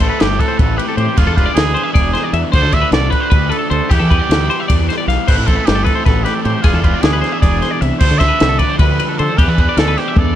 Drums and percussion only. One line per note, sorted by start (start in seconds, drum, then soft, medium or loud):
0.00 kick medium
0.00 ride medium
0.20 snare loud
0.20 ride loud
0.40 kick medium
0.40 ride medium
0.59 kick loud
0.59 ride loud
0.79 ride medium
0.98 ride medium
1.17 kick loud
1.17 ride loud
1.37 kick medium
1.37 ride medium
1.56 snare loud
1.56 ride loud
1.76 ride medium
1.95 kick loud
1.95 ride loud
2.15 snare soft
2.15 ride medium
2.33 ride medium
2.53 kick loud
2.53 crash loud
2.72 kick medium
2.72 ride medium
2.92 snare loud
2.92 ride loud
3.12 kick medium
3.12 ride medium
3.31 kick loud
3.31 ride loud
3.51 ride medium
3.71 ride medium
3.91 kick loud
3.91 ride loud
4.11 kick medium
4.11 ride medium
4.31 snare loud
4.31 ride loud
4.51 ride medium
4.70 kick loud
4.70 ride loud
4.90 snare soft
4.90 ride medium
5.10 snare soft
5.10 ride medium
5.28 kick loud
5.28 crash loud
5.47 kick medium
5.47 ride medium
5.67 snare loud
5.67 ride loud
5.86 kick medium
5.86 ride medium
6.06 kick loud
6.06 snare soft
6.06 ride loud
6.26 snare soft
6.26 ride medium
6.45 ride medium
6.64 kick loud
6.64 ride medium
6.84 kick medium
6.84 ride medium
7.03 snare loud
7.03 ride loud
7.24 snare soft
7.24 ride medium
7.43 kick loud
7.43 ride loud
7.62 snare soft
7.62 ride medium
7.82 ride medium
8.00 kick loud
8.00 crash loud
8.21 kick medium
8.21 snare soft
8.21 ride medium
8.40 snare loud
8.40 ride loud
8.59 kick medium
8.59 ride medium
8.79 kick loud
8.79 ride loud
9.00 ride medium
9.19 ride medium
9.38 kick loud
9.38 ride medium
9.58 kick medium
9.58 ride medium
9.77 snare loud
9.77 ride loud
9.98 snare soft
9.98 ride medium
10.16 kick loud
10.16 high tom medium